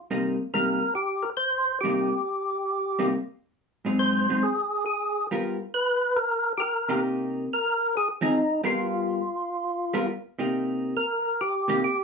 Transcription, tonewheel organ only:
0.54 A#4
0.95 G4
1.23 A#4
1.37 C5
1.81 G4
3.99 C5
4.43 G#4
4.86 G#4
5.74 B4
6.16 A#4
6.58 G4 A#4
7.53 A#4
7.97 G#4
8.22 D#4
8.65 F4
10.97 A#4
11.41 G4
11.84 G4

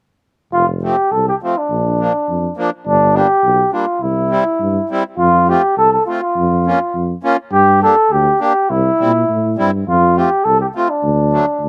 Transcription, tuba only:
0.53 F1
1.12 C2
1.70 A#1
2.29 F2
2.86 G1
3.44 B1
4.01 C2
4.60 G2
5.18 F2
5.77 C2
6.36 F2
6.95 F2
7.51 G2
8.11 D2
8.70 C2
9.01 A#2
9.29 A2
9.60 G2
9.88 F2
10.45 C2
11.03 D2
11.60 D2

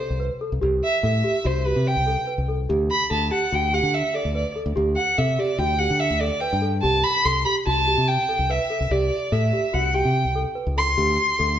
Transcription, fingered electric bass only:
0.10 C2
0.52 C2
0.62 C2
1.03 A2
1.45 C2
1.76 C3
1.96 C2
2.38 C2
2.70 D2
3.11 D2
3.52 D2
3.83 D3
4.25 D2
4.66 D2
4.77 D2
5.18 C3
5.58 D2
5.90 D3
6.11 D2
6.53 G2
6.84 C2
7.25 C2
7.67 C2
7.98 C3
8.39 C2
8.80 C2
8.91 C2
9.32 A2
9.74 C2
10.05 C3
10.25 C2
10.67 C#2
10.98 D2
11.40 D2

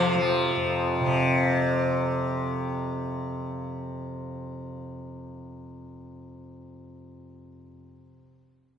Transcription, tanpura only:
Already playing: F2 C3 F3
0.15 F3
0.57 F2
1.00 C3

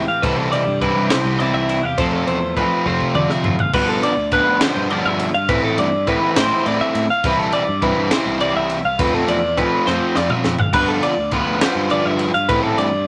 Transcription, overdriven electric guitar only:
0.23 E3 G3 C4 E4
0.83 E3 G3 C4 E4
1.11 E3 G3 C4 E4
1.41 E3 G3 C4 E4
1.99 F3 A3 C4 F4
2.57 F3 A3 C4 F4
2.86 F3 A3 C4 F4
3.16 F3 A3 C4 F4
3.74 D3 F3 B3 D4
4.32 D3 F3 B3 D4
4.62 D3 F3 B3 D4
4.91 D3 F3 B3 D4
5.49 E3 A3 C4 E4
6.07 E3 A3 C4 E4
6.37 E3 A3 C4 E4
6.66 E3 A3 C4 E4
7.24 E3 G3 C4 E4
7.83 E3 G3 C4 E4
8.12 E3 G3 C4 E4
8.41 E3 G3 C4 E4
8.99 F3 A3 C4 F4
9.57 F3 A3 C4 F4
9.86 F3 A3 C4 F4
10.15 F3 A3 C4 F4
10.74 D3 F3 B3 F4
11.33 D3 F3 B3 F4
11.62 D3 F3 B3 F4
11.91 D3 F3 B3 F4
12.49 E3 A3 C4 E4

